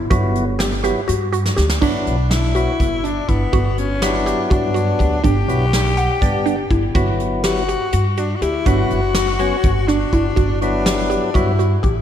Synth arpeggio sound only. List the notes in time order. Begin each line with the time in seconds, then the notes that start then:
0.10 F#4
0.59 G4
0.84 G4
1.08 F#4
1.33 F#4
1.57 G4
1.82 D4
2.55 F#4
3.04 D4
3.29 E4
3.53 F#4
4.02 G4
4.26 G4
4.50 F#4
4.74 F#4
4.99 G4
5.24 D4
5.97 F#5
6.46 D4
6.71 E4
6.95 F#4
7.44 G4
7.69 G4
7.93 F#4
8.18 F#4
8.42 G4
8.66 D4
9.39 F#4
9.88 D4
10.13 E4
10.36 F#4
10.86 G4
11.10 G4
11.34 F#4
11.59 F#4
11.83 G4